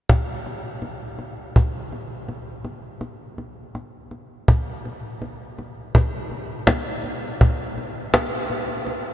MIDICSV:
0, 0, Header, 1, 2, 480
1, 0, Start_track
1, 0, Tempo, 731707
1, 62, Time_signature, 4, 2, 24, 8
1, 5993, End_track
2, 0, Start_track
2, 0, Title_t, "Cajon"
2, 62, Note_on_c, 9, 36, 91
2, 128, Note_off_c, 9, 36, 0
2, 303, Note_on_c, 9, 38, 22
2, 368, Note_off_c, 9, 38, 0
2, 537, Note_on_c, 9, 38, 29
2, 603, Note_off_c, 9, 38, 0
2, 777, Note_on_c, 9, 38, 20
2, 843, Note_off_c, 9, 38, 0
2, 1023, Note_on_c, 9, 36, 73
2, 1089, Note_off_c, 9, 36, 0
2, 1262, Note_on_c, 9, 38, 23
2, 1327, Note_off_c, 9, 38, 0
2, 1499, Note_on_c, 9, 38, 31
2, 1564, Note_off_c, 9, 38, 0
2, 1735, Note_on_c, 9, 38, 26
2, 1801, Note_off_c, 9, 38, 0
2, 1974, Note_on_c, 9, 38, 35
2, 2040, Note_off_c, 9, 38, 0
2, 2218, Note_on_c, 9, 38, 23
2, 2284, Note_off_c, 9, 38, 0
2, 2459, Note_on_c, 9, 38, 31
2, 2525, Note_off_c, 9, 38, 0
2, 2698, Note_on_c, 9, 38, 19
2, 2763, Note_off_c, 9, 38, 0
2, 2940, Note_on_c, 9, 36, 71
2, 3006, Note_off_c, 9, 36, 0
2, 3184, Note_on_c, 9, 38, 24
2, 3249, Note_off_c, 9, 38, 0
2, 3422, Note_on_c, 9, 38, 33
2, 3487, Note_off_c, 9, 38, 0
2, 3663, Note_on_c, 9, 38, 25
2, 3729, Note_off_c, 9, 38, 0
2, 3902, Note_on_c, 9, 36, 97
2, 3967, Note_off_c, 9, 36, 0
2, 4142, Note_on_c, 9, 38, 22
2, 4208, Note_off_c, 9, 38, 0
2, 4376, Note_on_c, 9, 38, 89
2, 4441, Note_off_c, 9, 38, 0
2, 4617, Note_on_c, 9, 38, 22
2, 4682, Note_off_c, 9, 38, 0
2, 4861, Note_on_c, 9, 36, 78
2, 4927, Note_off_c, 9, 36, 0
2, 5101, Note_on_c, 9, 38, 27
2, 5166, Note_off_c, 9, 38, 0
2, 5338, Note_on_c, 9, 38, 101
2, 5404, Note_off_c, 9, 38, 0
2, 5575, Note_on_c, 9, 38, 27
2, 5641, Note_off_c, 9, 38, 0
2, 5816, Note_on_c, 9, 38, 36
2, 5881, Note_off_c, 9, 38, 0
2, 5993, End_track
0, 0, End_of_file